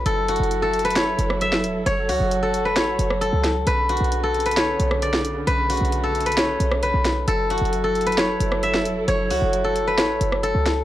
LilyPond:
<<
  \new Staff \with { instrumentName = "Guzheng" } { \time 4/4 \key fis \phrygian \tempo 4 = 133 a'8 fis'8. a'8 b'16 cis''4 e''4 | cis''8 fis'8. a'8 b'16 cis''4 a'4 | b'8 fis'8. a'8 b'16 cis''4 d''4 | b'8 fis'8. a'8 b'16 cis''4 b'4 |
a'8 fis'8. a'8 b'16 cis''4 e''4 | cis''8 fis'8. a'8 b'16 cis''4 a'4 | }
  \new Staff \with { instrumentName = "String section" } { \time 4/4 \key fis \phrygian << { <fis a'>1~ | <fis a'>1 | <cis d>1~ | <cis d>1 |
<fis a'>1~ | <fis a'>1 | } \\ { e'1 | fis'1 | b1 | a1 |
e'1~ | e'1 | } >> }
  \new Staff \with { instrumentName = "808-style bass" } { \clef bass \time 4/4 \key fis \phrygian fis,,8. fis,,4.~ fis,,16 fis,,4 e,,16 fis,,16 | fis,,8 cis,16 fis,,4~ fis,,16 a,,8 fis,,8. cis,8. | b,,8. b,,4.~ b,,16 b,,4. | b,,8. b,,4.~ b,,16 b,,8. b,,8. |
fis,,8. fis,,4.~ fis,,16 fis,,4 e,,16 fis,,16 | fis,,8 cis,16 fis,,4~ fis,,16 a,,8 fis,,8. cis,8. | }
  \new DrumStaff \with { instrumentName = "Drums" } \drummode { \time 4/4 \tuplet 3/2 { hh16 r16 r16 hh16 hh16 hh16 } hh8 hh32 hh32 hh32 hh32 <hh sn>8 hh16 ss16 hh16 sn16 hh8 | hh8 hho8 hh8 hh8 <hh sn>8 hh16 ss16 hh8 <hh sn>8 | \tuplet 3/2 { hh16 r16 r16 hh16 hh16 hh16 } hh8 hh32 hh32 hh32 hh32 <hh sn>8 hh16 ss16 hh16 sn16 hh8 | \tuplet 3/2 { hh16 r16 r16 <hh hho>16 hh16 hh16 } hh8 hh32 hh32 hh32 hh32 <hh sn>8 hh16 ss16 hh8 <hh sn>8 |
\tuplet 3/2 { hh16 r16 r16 hh16 hh16 hh16 } hh8 hh32 hh32 hh32 hh32 <hh sn>8 hh16 ss16 hh16 sn16 hh8 | hh8 hho8 hh8 hh8 <hh sn>8 hh16 ss16 hh8 <hh sn>8 | }
>>